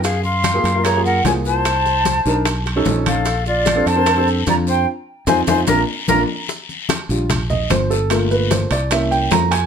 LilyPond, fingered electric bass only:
\new Staff \with { instrumentName = "Fingered electric bass" } { \clef bass \time 4/4 \key bes \major \tempo 4 = 149 ges,4. ges,4. c,4~ | c,4. ces,4. bes,,4~ | bes,,4. f,4. f,4 | r4 f,8 f,8 bes,,8 r8 bes,,8 r8 |
\key g \phrygian r4. bes,,4. g,,4~ | g,,4. c,4. f,4 | }